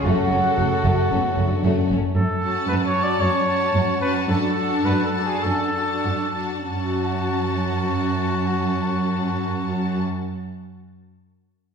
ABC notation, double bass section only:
X:1
M:4/4
L:1/8
Q:1/4=102
K:F#m
V:1 name="Double bass section" clef=bass
F,,, F,,, F,,, F,,, F,,, F,,, F,,, F,,, | z8 | z8 | z8 |
z8 |]